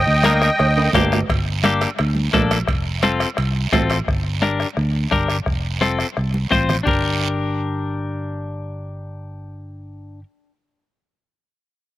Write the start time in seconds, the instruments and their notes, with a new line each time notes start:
Already playing: accordion D#5 G5
0.07 fingered electric bass D2
0.24 clean electric guitar A#3 D4 A#4, bombo rim, cowbell, high conga, short guiro
0.42 bombo rim, short guiro
0.59 fingered electric bass D2, bombo rim, cowbell, long guiro
0.77 high timbale
0.93 fingered electric bass G1, clean electric guitar A#3 D4 G4, bombo low, bombo rim, cowbell, high conga, low conga, low timbale, short guiro
1.12 bombo rim, low timbale, short guiro
1.29 fingered electric bass G1, bombo low, bombo rim, high timbale, long guiro
1.63 clean electric guitar A#3 D4 G4, bombo rim, high conga, high timbale, short guiro
1.81 bombo rim, high timbale, short guiro
1.99 fingered electric bass D2, bombo rim, high timbale, long guiro
2.15 high conga
2.33 fingered electric bass A#1, clean electric guitar A#3 D4 A4, bombo low, bombo rim, high conga, high timbale, low timbale, short guiro
2.51 bombo rim, high timbale, short guiro
2.67 fingered electric bass F1, bombo low, bombo rim, high timbale, long guiro
3.03 clean electric guitar C4 F4 A4, bombo rim, high conga, high timbale, short guiro
3.20 bombo rim, high timbale, short guiro
3.37 fingered electric bass C2, bombo rim, high timbale, long guiro
3.72 fingered electric bass A1, clean electric guitar C4 F4 A4, bombo low, bombo rim, high conga, high timbale, low timbale, short guiro
3.90 bombo rim, high timbale, short guiro
4.08 fingered electric bass G1, bombo low, bombo rim, long guiro
4.42 clean electric guitar D4 G4 A#4, bombo rim, high conga, short guiro
4.60 bombo rim, short guiro
4.77 fingered electric bass D2, bombo rim, long guiro
5.11 fingered electric bass G1, clean electric guitar D4 G4 A#4, bombo low, bombo rim, high conga, short guiro
5.28 bombo rim, short guiro
5.46 fingered electric bass F1, bombo low, bombo rim, long guiro
5.81 clean electric guitar C4 F4 A4, bombo rim, high conga, short guiro
5.99 bombo rim, short guiro
6.17 fingered electric bass C2, bombo rim, long guiro
6.34 high conga
6.51 fingered electric bass A1, clean electric guitar C4 F4 C5, bombo low, bombo rim, high conga, short guiro
6.69 bombo rim, low conga, short guiro
6.83 fingered electric bass G1, clean electric guitar D4 G4, bombo low, low conga, long guiro
6.88 clean electric guitar A#4